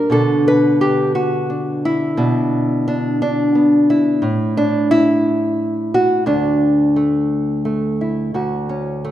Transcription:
0.00 0.10 G3 soft
0.00 0.11 D4 soft
0.00 0.12 A#4 medium
0.10 2.13 B2 medium
0.10 4.23 D3 soft
0.10 1.49 D4 soft
0.10 0.46 A4 medium
0.48 1.50 B4 loud
0.81 1.15 G4 medium
1.15 1.84 F#4 medium
1.50 2.14 D4 soft
1.85 3.55 E4 medium
2.17 4.18 B2 medium
2.17 2.86 D4 soft
2.88 3.21 D4 medium
3.22 3.89 D4 medium
3.55 4.19 B3 soft
3.90 4.57 E4 medium
4.22 6.27 A2 medium
4.57 4.91 D4 medium
4.91 5.93 E4 loud
5.94 6.26 F#4 medium
6.26 8.33 D2 medium
6.26 8.01 D4 medium
6.96 7.64 A3 medium
7.65 8.30 A3 soft
8.01 8.31 E4 soft
8.34 9.11 D2 medium
8.34 9.11 F#4 medium
8.69 9.11 C#4 medium
9.04 9.11 A3 medium

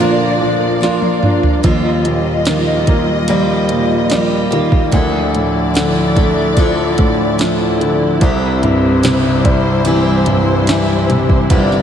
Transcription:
0.00 0.81 A#2 medium
0.00 1.60 A#2 medium
0.00 0.82 D3 medium
0.00 0.37 F3 soft
0.00 0.80 F3 medium
0.00 0.82 A#3 medium
0.00 1.61 A#3 medium
0.00 0.78 D4 soft
0.00 0.82 D4 medium
0.00 0.81 F4 medium
0.00 4.89 F4 medium
0.00 1.19 A#4 soft
0.00 0.83 A#4 medium
0.00 1.61 D5 medium
0.41 1.61 F3 soft
0.81 1.63 F3 medium
0.81 1.64 A#3 medium
0.81 1.64 D4 medium
0.81 1.62 F4 soft
0.81 1.65 A#4 medium
0.81 snare soft
1.02 high tom medium
1.23 1.63 D4 soft
1.23 mid tom medium
1.43 floor tom medium
1.63 4.89 D#2 medium
1.63 2.46 D#3 medium
1.63 2.45 F3 medium
1.63 4.90 G3 medium
1.63 2.46 A#3 medium
1.63 2.47 F4 medium
1.63 2.47 G4 medium
1.63 4.90 D#5 medium
1.63 kick loud
1.63 closed hi-hat medium
2.05 3.66 A#2 soft
2.05 closed hi-hat medium
2.45 4.07 D#3 medium
2.45 3.28 F3 medium
2.45 3.28 A#3 medium
2.45 3.29 F4 medium
2.45 3.29 G4 medium
2.45 snare loud
2.45 closed hi-hat medium
2.87 4.48 A#3 medium
2.87 kick medium
2.87 closed hi-hat medium
3.28 4.10 D#3 medium
3.28 4.10 F3 medium
3.28 4.10 G3 medium
3.28 4.10 A#3 medium
3.28 4.12 F4 medium
3.28 4.12 G4 medium
3.28 closed hi-hat medium
3.69 4.90 A#2 soft
3.69 closed hi-hat medium
4.10 4.51 F3 medium
4.10 4.91 G3 medium
4.10 4.52 A#3 medium
4.10 4.51 F4 medium
4.10 4.49 G4 medium
4.10 snare medium
4.10 closed hi-hat medium
4.51 4.92 D#3 soft
4.51 4.92 A#3 soft
4.51 4.93 F4 soft
4.51 4.92 G4 soft
4.51 closed hi-hat medium
4.72 kick medium
4.92 8.18 D2 medium
4.92 5.74 D3 medium
4.92 5.73 F3 medium
4.92 8.19 F3 medium
4.92 5.74 D4 medium
4.92 11.82 E4 medium
4.92 5.75 E4 medium
4.92 5.76 A4 medium
4.92 8.19 D5 medium
4.92 kick medium
4.92 closed hi-hat medium
5.35 6.95 A2 soft
5.35 closed hi-hat medium
5.74 7.36 D3 soft
5.74 6.16 F3 medium
5.74 6.16 D4 medium
5.74 6.16 E4 medium
5.74 6.14 A4 medium
5.74 snare loud
5.74 closed hi-hat medium
6.15 7.77 A3 medium
6.15 6.57 D4 soft
6.15 6.57 E4 soft
6.15 6.57 A4 soft
6.15 kick medium
6.15 closed hi-hat medium
6.57 7.39 D3 medium
6.57 7.37 F3 medium
6.57 7.38 F3 medium
6.57 7.38 D4 medium
6.57 7.40 E4 medium
6.57 7.40 A4 medium
6.57 kick medium
6.57 closed hi-hat medium
6.98 8.18 A2 soft
6.98 kick medium
6.98 closed hi-hat medium
7.38 8.21 F3 medium
7.38 8.19 F3 medium
7.38 8.22 D4 medium
7.38 8.22 E4 medium
7.38 8.23 A4 medium
7.38 snare medium
7.38 closed hi-hat medium
7.81 8.20 D3 soft
7.81 closed hi-hat medium
8.21 11.46 C2 medium
8.21 9.04 C3 medium
8.21 11.82 G3 medium
8.21 9.02 G3 medium
8.21 9.04 C4 medium
8.21 9.05 E4 medium
8.21 9.05 G4 medium
8.21 11.47 C5 medium
8.21 kick medium
8.21 closed hi-hat medium
8.63 10.23 G2 soft
8.63 closed hi-hat medium
9.03 10.64 C3 medium
9.03 9.86 G3 medium
9.03 9.87 C4 medium
9.03 9.87 E4 medium
9.03 9.88 G4 medium
9.03 snare loud
9.03 closed hi-hat medium
9.45 11.05 G3 medium
9.45 kick medium
9.45 closed hi-hat medium
9.85 10.68 C3 medium
9.85 10.67 E3 medium
9.85 10.67 G3 medium
9.85 10.68 C4 medium
9.85 10.69 E4 medium
9.85 10.70 G4 medium
9.85 closed hi-hat medium
10.26 11.82 G2 soft
10.26 closed hi-hat medium
10.67 11.82 E3 medium
10.67 11.50 G3 medium
10.67 11.51 C4 medium
10.67 11.51 E4 medium
10.67 11.52 G4 medium
10.67 snare loud
10.67 closed hi-hat medium
11.10 11.82 C3 medium
11.10 closed hi-hat medium
11.29 kick medium
11.50 11.82 G1 medium
11.50 11.82 C3 medium
11.50 11.82 G3 medium
11.50 11.82 C4 medium
11.50 11.82 E4 medium
11.50 11.82 G4 medium
11.50 11.82 D5 medium
11.50 kick medium
11.50 closed hi-hat medium
11.72 snare soft

